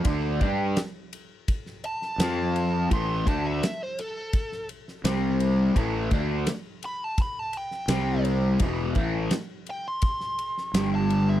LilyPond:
<<
  \new Staff \with { instrumentName = "Lead electric guitar" } { \time 4/4 \key d \major \tempo 4 = 84 r2 r8 a''4. | c'''8 a''16 e''8 c''16 a'4 r4. | r4. b''16 a''16 b''16 a''16 g''4 r8 | r4. g''16 c'''4. a''8 e''16 | }
  \new Staff \with { instrumentName = "Overdriven electric guitar" } { \clef bass \time 4/4 \key d \major <d a d'>8 <g d' g'>8 r2 <f c' f'>4 | <a, e a>8 <d a d'>8 r2 <c g c'>4 | <a, e a>8 <d a d'>8 r2 <c g c'>4 | <e, b, e>8 <a, e a>8 r2 <g, d g>4 | }
  \new Staff \with { instrumentName = "Fingered electric bass" } { \clef bass \time 4/4 \key d \major d,8 g,8 r2 f,4 | a,,8 d,8 r2 c,4 | a,,8 d,8 r2 c,4 | e,,8 a,,8 r2 g,,4 | }
  \new DrumStaff \with { instrumentName = "Drums" } \drummode { \time 4/4 <bd cymr>8 <bd cymr>8 <cymr sn>8 cymr8 <bd cymr>16 sn16 cymr16 sn16 <cymr sn>8 cymr8 | <bd cymr>8 <bd cymr>8 <cymr sn>8 cymr8 <bd cymr>16 sn16 cymr16 sn16 <cymr sn>8 cymr8 | <bd cymr>8 <bd cymr>8 <cymr sn>8 cymr8 <bd cymr>8 cymr16 sn16 <cymr sn>8 cymr8 | <bd cymr>8 <bd cymr>8 <cymr sn>8 cymr8 <bd cymr>16 sn16 cymr16 sn16 <cymr sn>8 cymr8 | }
>>